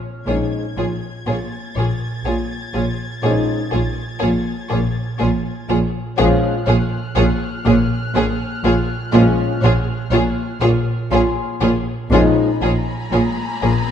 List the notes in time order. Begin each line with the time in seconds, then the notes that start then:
Already playing: C#5 F6 G#6 A#6
0.26 A#1 A#2 F3 G#3 C#4 D#4 F4 G#4 C#5 G#6
0.77 A#1 A#2 F4 G#4 C#5
1.26 A#1 A#2 A#3 F4 G#4 C#5 A6
1.75 A#1 A#2 F4 G#4 C#5
2.25 A#1 A#2 A#3 F4 G#4 C#5
2.74 A#1 A#2 F4 G#4 C#5
3.23 A#1 A#2 F3 G#3 C#4 D#4 F4 G#4 C#5 D#6
3.71 A#1 A#2 F4 G#4 C#5
4.20 A#1 A#2 A#3 F4 G#4 C#5
4.70 A#1 A#2 F4 G#4 C#5
5.19 A#1 A#2 A#3 F4 G#4 C#5
5.68 A#1 A#2 F4 G#4 C#5
6.17 A#1 A#2 F3 G#3 C#4 F4 G#4 C#5 F6 F#6
6.67 A#1 A#2 F4 G#4 C#5
7.16 A#1 A#2 A#3 F4 G#4 C#5
7.65 A#1 A#2 F4 G#4 C#5
8.14 A#1 A#2 A#3 F4 G#4 C#5
8.63 A#1 A#2 F4 G#4 C#5
9.11 A#1 A#2 F3 G#3 C#4 F4 G#4 C#5
9.61 A#1 A#2 F4 G#4 C#5
10.11 A#1 A#2 A#3 F4 G#4 C#5
10.61 A#1 A#2 F4 G#4 C#5
11.11 A#1 A#2 A#3 F4 G#4 C#5 C6
11.61 A#1 A#2 F4 G#4 C#5
12.11 A#1 A#2 F3 G#3 C#4 D#4 F4 G#4 C#5 G#5 A#5 B5, riser
12.61 A#1 A#2 F4 G#4 C#5
13.11 A#1 A#2 A#3 F4 G#4 C#5
13.62 A#1 A#2 F4 G#4 C#5